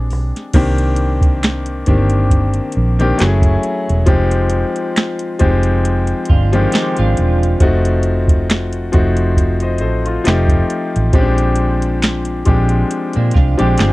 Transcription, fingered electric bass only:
0.00 0.12 A#1 medium
0.12 0.31 B1 medium
0.55 1.83 C2 medium
1.89 2.59 G1 medium
2.77 3.11 A#1 medium
3.21 3.56 F#1 loud
3.90 4.05 E1 medium
4.08 4.63 F1 medium
5.42 6.12 F1 medium
6.31 6.65 G1 medium
6.99 7.14 G#1 medium
7.19 7.53 E1 medium
7.62 8.89 F1 medium
8.95 9.83 F1 medium
9.83 10.18 A1 loud
10.27 10.62 F1 medium
10.96 11.11 A1 medium
11.14 12.42 A#1 medium
12.48 12.82 A#1 loud
13.17 13.31 A#2 medium
13.37 13.55 C2 medium
13.60 13.75 A#1 medium
13.80 13.93 G1 loud

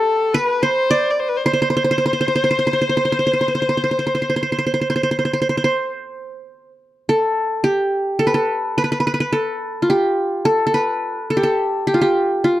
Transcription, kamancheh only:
0.00 0.36 A4 medium
0.34 0.64 B4 loud
0.63 1.12 C5 medium
1.11 1.21 D5 medium
1.20 1.30 C5 medium
1.29 1.38 B4 medium
1.37 1.45 C5 medium
1.46 5.91 C5 medium

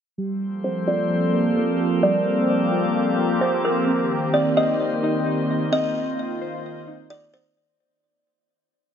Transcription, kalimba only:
0.64 0.86 C5 medium
0.88 1.99 D5 medium
2.03 2.46 D5 loud
3.41 3.63 C5 medium
3.65 3.86 A#4 medium
4.34 4.56 D5 medium
4.57 5.68 D#5 medium
5.73 6.16 D#5 medium
7.10 7.32 D5 medium
7.34 7.56 C5 medium

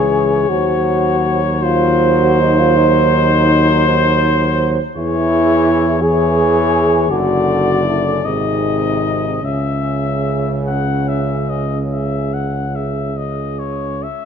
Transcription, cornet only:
0.00 1.65 C#5 medium
1.63 4.79 C5 medium
4.96 5.98 C#5 medium
6.03 7.08 C#5 medium
7.11 8.26 D5 medium
8.25 9.46 D#5 medium
9.45 10.59 E5 soft
10.67 11.10 F#5 medium
11.08 11.51 E5 soft
11.49 11.79 D#5 soft
11.91 12.35 E5 soft
12.34 12.77 F#5 soft
12.75 13.19 E5 soft
13.17 13.60 D#5 soft
13.59 14.04 C#5 soft
14.03 14.25 E5 soft

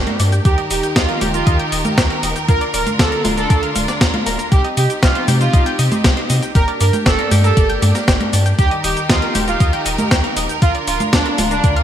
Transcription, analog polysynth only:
0.45 0.61 G4 loud
0.71 0.86 G4 medium
0.96 1.20 F4 loud
1.34 1.58 F4 loud
2.49 2.64 A#4 loud
2.74 2.90 A#4 medium
2.99 3.23 A4 loud
3.38 3.61 A4 loud
4.52 4.68 G4 loud
4.77 4.93 G4 medium
5.03 5.26 F4 loud
5.41 5.64 F4 loud
6.55 6.71 A#4 loud
6.81 6.96 A#4 medium
7.06 7.30 A4 loud
7.44 7.68 A4 loud
8.59 8.74 G4 loud
8.84 9.00 G4 medium
9.10 9.33 F4 loud
9.48 9.71 F4 loud
10.62 10.78 F4 loud
10.88 11.03 F4 medium
11.13 11.36 D4 loud
11.51 11.75 D4 loud

